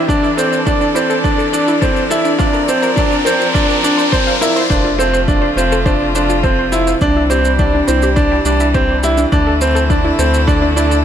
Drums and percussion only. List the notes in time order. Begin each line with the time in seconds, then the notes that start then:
0.09 kick, shaker
0.24 shaker
0.38 shaker
0.53 shaker
0.67 kick, shaker
0.81 shaker
0.96 shaker
1.10 shaker
1.24 kick, shaker
1.39 shaker
1.54 shaker
1.68 shaker
1.82 kick, shaker
1.96 shaker
2.11 shaker
2.25 shaker
2.40 kick, shaker
2.54 shaker
2.68 shaker
2.83 shaker
2.97 kick, shaker
3.12 shaker
3.27 shaker
3.41 shaker
3.55 kick, shaker
3.70 shaker
3.84 shaker
3.99 shaker
4.13 kick, shaker
4.28 shaker
4.42 shaker
4.56 shaker
4.70 kick, shaker
5.00 shaker
5.14 shaker
5.28 kick, shaker
5.58 shaker
5.72 shaker
5.86 kick, shaker
6.15 shaker
6.30 shaker
6.44 kick, shaker
6.72 shaker
6.87 shaker
7.01 kick, shaker
7.30 shaker
7.45 shaker
7.59 kick, shaker
7.88 shaker
8.02 shaker
8.17 kick, shaker
8.45 shaker
8.60 shaker
8.74 kick, shaker
9.03 shaker
9.18 shaker
9.32 kick, shaker
9.61 shaker
9.76 shaker
9.90 kick, shaker
10.19 shaker
10.34 shaker
10.48 kick, shaker
10.77 shaker
10.92 shaker